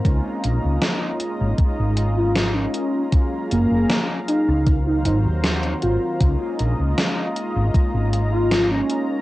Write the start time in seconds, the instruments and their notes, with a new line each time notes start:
Already playing: analog synth pad A#5
0.04 fretless electric bass C#2, analog polysynth G#3 A#3 C#4 D#4 F4, analog synth pad F4 D#5, kick, closed hi-hat
0.44 fretless electric bass A#1, closed hi-hat
0.64 fretless electric bass C#2
0.82 snare, closed hi-hat
1.20 closed hi-hat
1.41 fretless electric bass G#1
1.58 kick, closed hi-hat
1.79 fretless electric bass G#1
1.97 closed hi-hat
2.17 soft synth lead F4
2.36 snare, closed hi-hat
2.55 soft synth lead C#4
2.74 closed hi-hat
3.11 analog polysynth F#3 G#3 A#3 C#4 F4, analog synth pad G#4 F5 A#5, kick, closed hi-hat
3.51 fretless electric bass F#1, soft synth lead A#3, closed hi-hat
3.71 fretless electric bass F#1
3.90 snare, closed hi-hat
4.28 soft synth lead D#4, closed hi-hat
4.48 fretless electric bass C#2
4.65 analog polysynth D#3 F#3 A#3 C4 F4, analog synth pad F#3 C5 A#5, kick, closed hi-hat
4.87 soft synth lead D#4
5.05 fretless electric bass G#1, soft synth lead D#4, closed hi-hat
5.25 fretless electric bass D#2
5.44 snare, closed hi-hat
5.63 closed hi-hat
5.82 fretless electric bass G#1, soft synth lead F4, closed hi-hat
6.19 fretless electric bass C#2, analog polysynth G#3 A#3 C#4 D#4 F4, analog synth pad F4 D#5, kick, closed hi-hat
6.59 fretless electric bass A#1, closed hi-hat
6.79 fretless electric bass C#2
6.98 snare, closed hi-hat
7.36 closed hi-hat
7.56 fretless electric bass G#1
7.74 kick, closed hi-hat
7.94 fretless electric bass G#1
8.13 closed hi-hat
8.32 soft synth lead F4
8.52 snare, closed hi-hat
8.71 soft synth lead C#4
8.90 closed hi-hat